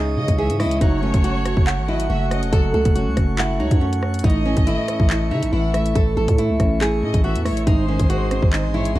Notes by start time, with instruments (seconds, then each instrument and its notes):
Already playing: 808-style bass C#2, grand piano C#3 E3 G#3 C#4 D#4 D#5, nylon-string guitar G#4, pipe organ C#5 D#5 D#6
0.17 808-style bass C#3, grand piano C#3, violin section D#5
0.28 808-style bass C#2, kick, closed hi-hat
0.38 grand piano E3, nylon-string guitar G#4, violin section E5
0.50 808-style bass G#2, closed hi-hat
0.60 grand piano G#3, nylon-string guitar E4, violin section D#5, cross-stick, open hi-hat
0.65 808-style bass C#2
0.71 closed hi-hat
0.81 808-style bass F#1, grand piano F#3, pipe organ A3 F#5 C#6, nylon-string guitar D#4, violin section C#5, kick, closed hi-hat
1.02 grand piano A3, nylon-string guitar C#4
1.14 808-style bass F#1, kick, closed hi-hat
1.24 grand piano C#4, nylon-string guitar F#4, closed hi-hat
1.46 grand piano F#4, cross-stick, closed hi-hat
1.57 808-style bass F#1, kick
1.67 grand piano F#5, clap
1.78 808-style bass G#1
1.88 grand piano F#3, nylon-string guitar E4, violin section D#5
2.00 closed hi-hat
2.09 808-style bass F#1, grand piano A3, nylon-string guitar F#4, violin section E5
2.31 grand piano C#4, violin section D#5, cross-stick, closed hi-hat
2.43 808-style bass E1, closed hi-hat
2.52 808-style bass F#1, grand piano F#3, nylon-string guitar A4, kick, closed hi-hat
2.74 808-style bass C#2, grand piano A3, nylon-string guitar A4
2.85 808-style bass F#1, kick, closed hi-hat
2.95 grand piano C#4, nylon-string guitar F#4, closed hi-hat
3.07 808-style bass C#2
3.16 808-style bass F#1, grand piano F#4, kick, cross-stick, closed hi-hat
3.38 nylon-string guitar E4, grand piano F#5, clap
3.60 808-style bass C#2, grand piano F#3, nylon-string guitar D#4, violin section C#5
3.71 808-style bass F#2, kick, closed hi-hat
3.81 grand piano A3, nylon-string guitar C#4
3.93 closed hi-hat
4.02 grand piano C#4, cross-stick
4.14 closed hi-hat
4.19 closed hi-hat
4.24 808-style bass A1, grand piano A2, nylon-string guitar D#4, pipe organ E4, violin section D#5, kick, closed hi-hat
4.30 closed hi-hat
4.46 grand piano E3, nylon-string guitar C#4
4.57 808-style bass G#1, kick, closed hi-hat
4.67 grand piano A3, nylon-string guitar E4, closed hi-hat
4.88 grand piano C#4, cross-stick, closed hi-hat
5.00 808-style bass A1, kick
5.10 grand piano E4, clap
5.31 grand piano A2, 808-style bass C#3, nylon-string guitar D#4, violin section E5
5.43 808-style bass A1, closed hi-hat
5.53 808-style bass A1, grand piano E3, nylon-string guitar E4, violin section F#5
5.74 grand piano A3, violin section E5, cross-stick, closed hi-hat
5.86 closed hi-hat
5.95 808-style bass A1, grand piano A2, nylon-string guitar A4, kick, closed hi-hat
6.17 808-style bass A1, grand piano E3, nylon-string guitar A4
6.28 808-style bass A2, kick, closed hi-hat
6.38 grand piano A3, nylon-string guitar E4, closed hi-hat
6.50 808-style bass C#2
6.60 808-style bass A1, grand piano C#4, kick, cross-stick, closed hi-hat
6.81 grand piano E4, nylon-string guitar G#4, clap
7.03 808-style bass A2, grand piano A2, violin section D#5
7.14 808-style bass A1, kick, closed hi-hat
7.24 grand piano E3, nylon-string guitar F#4, violin section E5
7.35 808-style bass E2, closed hi-hat
7.45 grand piano A3, nylon-string guitar E4, violin section C#5, cross-stick, open hi-hat
7.51 808-style bass A1
7.57 closed hi-hat
7.67 808-style bass G#1, grand piano G#2, nylon-string guitar D#4, pipe organ G#4 D#5 C6, violin section C5, kick, closed hi-hat
7.88 grand piano D#3, nylon-string guitar C#4
7.99 808-style bass G#1, kick, closed hi-hat
8.09 grand piano G#3, nylon-string guitar F#4, closed hi-hat
8.31 grand piano C4, cross-stick, closed hi-hat
8.43 808-style bass G#1, kick
8.52 grand piano D#4, clap
8.64 808-style bass A1
8.74 grand piano G#2, nylon-string guitar E4, violin section C#5
8.85 closed hi-hat
8.95 808-style bass G#1, nylon-string guitar F#4, violin section D#5